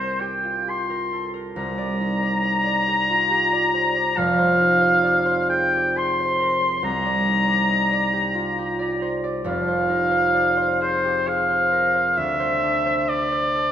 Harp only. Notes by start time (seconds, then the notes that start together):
Already playing: C2 A#3 C4 A#4 C5
0.21 G4
0.43 F4
0.67 G4
0.90 A#4
1.12 A4
1.34 A#4
1.56 C2
1.78 D5
2.01 D#4
2.22 D5
2.44 D#5
2.65 D5
2.88 G4
3.10 F4
3.31 G4
3.53 D5
3.74 C5
3.96 D5
4.17 F1 F2
4.39 C5
4.61 D#4
4.81 C5
5.03 D5
5.25 C5
5.50 G#4
5.73 G4
5.96 G#4
6.20 C5
6.40 A#4
6.62 C5
6.83 C2
7.05 D5
7.25 D#4
7.47 D5
7.69 D#5
7.91 D5
8.13 G4
8.35 F4
8.58 G4
8.79 D5
9.02 C5
9.24 D5
9.44 F1 F2
9.68 C5
9.89 D#4
10.11 C5
10.34 D5
10.57 C5
10.81 G#4
11.04 G4
11.27 G#4
11.50 C5
11.72 A#4
11.94 C5
12.17 D2
12.40 C5
12.63 D4
12.86 C5
13.09 D5
13.32 C5
13.55 A4